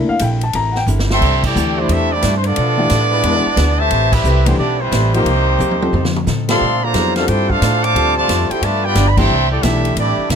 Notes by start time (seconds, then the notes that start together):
Already playing: A3 A#3 D4 E4 A4
0.09 F5, muted upright bass stroke
0.19 A#1 C3 A#3 E4 A4 G5, hi-hat pedal, ride
0.41 A5, ride
0.53 A1 C3 A#3 E4 A4 A#5, ride
0.72 F#5, snare
0.77 G5
0.87 G1 C3 A#3 E4 A4, hi-hat pedal
0.99 snare
1.10 G3 A3 C4 A4 E5 G5 C6, snare
1.21 C2 C3 E3 A3 D4, kick, crash
1.44 A3 E4 G4 A4 D5 G5, kick, crash
1.55 D2 C3 E3 A3 D4 G4, hi-hat pedal
1.77 G3 A3 D4 E4 G4 C5 D5
1.88 E2 C3 E3 G3 A3 D4 E4 G4 A4 E5, ride
2.12 G3 A3 D4 E4 G4 D5
2.22 G2 C3 E3 A3 D4, snare, hi-hat pedal, ride
2.37 C5
2.44 F3 A3 B3 D4 F4 A4 D5, ride
2.55 B2 F3 A3 D4, ride
2.77 E3 A3 D4 G4
2.90 A2 B2 F3 A3 D4, snare, hi-hat pedal, ride
3.11 G#3 D4 E4 B4
3.23 E2 E3 G#3 B3 D4 E4 G#4, ride
3.46 muted upright bass stroke
3.56 D2 E3 B3 D4 G#4, snare, hi-hat pedal, ride
3.80 C3 E3 A3 G4 C5 E5 A5
3.91 A1 A3 C4 G4 B4, ride
4.12 G3 C4 E4 G4 B4 E5, kick, crash
4.24 C2 A3 C4 G4 B4, hi-hat pedal
4.46 E3 G3 A3 B3 C4 D4 E4 G4 C5, ride
4.58 B1 A3 B3 C4 D4 E4 G4 B4 D5
4.81 E3 G3 C4 E4 B4 C5
4.92 A1 A3 C4 G4 B4, snare, hi-hat pedal, ride
5.14 D#3 F3 G3 A#3 C4 D#4 G4 C5, ride
5.25 C2 C3 A#3 D#4 G4, ride
5.59 D#2 C3 A#3 D#4 G4, hi-hat pedal, high tom
5.71 high tom
5.81 G3 C4 F4 A4, high tom
5.93 F2 F3 C4 D#4 A4, mid tom
6.05 snare
6.16 mid tom
6.27 A2 F3 C4 D#4 A4, snare, hi-hat pedal
6.48 A#2 D3 F3 G3 A3 C4 F4 A4 D5 F5 C6, snare, ride
6.60 A#2 A#3 D4 A4 C5
6.83 D3 F3 A#3 F4 C5 D5 A#5
6.94 F2 F#3 A#3 B3 D4 E4 G#4 A4 C5, snare, hi-hat pedal, ride
7.15 D3 G3 A3 A#3 C4 D4 F4 A4 C5 F5, snare, ride
7.27 G2 A#3 D4 E4 G4 A4 C5 G5, ride
7.49 A3 D4 F4 A4 C5 F5, kick
7.60 A2 A#3 D4 A4 C5, snare, hi-hat pedal, ride
7.84 F3 A3 D4 C5 F5 A5 D6, ride
7.94 D2 D3 F3 G3 C4 D4 F4 A4, ride
8.18 C3 F3 A3 F4 C5 D5 A5
8.28 F2 D3 C4 F4 A4, snare, hi-hat pedal, ride
8.50 E4 G4 A4 C5 G5, muted upright bass stroke, ride
8.62 G2 F3 A3 B3 D4 F4 B4 D5 A5, ride
8.84 B3 D4 F4 G4 B4 D5 G5
8.95 G1 G2 F3 B3 D4, snare, hi-hat pedal, ride
9.09 B5
9.17 E3 G3 A3 C4 D4 G4 A4 E5 G5 C6, kick, crash
9.29 C2 C3 E3 A3
9.33 D4
9.51 A3 E4 G4 A4 D5 G5
9.62 B1 C3 E3 G3 A3 D4 E4 G4 A4 E5, snare, hi-hat pedal, ride
9.85 ride
9.96 A1 C3 E3 G3 A3 D4 E4 G4 D5, ride
10.18 muted upright bass stroke
10.29 F1 C3 E3 G3 A3 E4 G4 A4 E5, snare, hi-hat pedal, ride